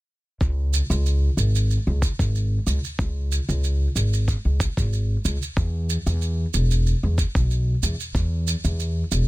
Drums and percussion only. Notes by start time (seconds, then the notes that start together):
0.41 kick, shaker
0.73 shaker
0.91 shaker
1.06 shaker
1.38 shaker
1.55 shaker
1.70 shaker
2.02 kick, shaker
2.19 kick, shaker
2.35 shaker
2.67 shaker
2.84 shaker
2.99 kick, shaker
3.32 shaker
3.49 shaker
3.64 shaker
3.96 shaker
4.13 shaker
4.28 kick, shaker
4.60 kick, shaker
4.77 kick, shaker
4.93 shaker
5.25 shaker
5.42 shaker
5.57 kick, shaker
5.90 shaker
6.07 shaker
6.22 shaker
6.54 shaker
6.71 shaker
6.86 shaker
7.18 kick, shaker
7.35 kick, shaker
7.51 shaker
7.83 shaker
8.00 shaker
8.15 kick, shaker
8.47 shaker
8.65 shaker
8.80 shaker
9.12 shaker